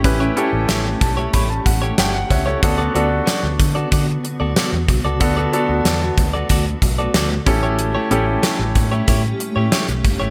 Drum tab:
HH |x-x-x-x-x-x-x-x-|x-x-x-x-x-x-x-x-|x-x-x-x-x-x-x-x-|x-x-x-x-x-x-xxx-|
SD |----o-------o---|----o-------o---|----o-------o---|----o-------o---|
BD |o-----o-o-o---o-|o-----o-o-----o-|o-----o-o-o---o-|------o-o-----o-|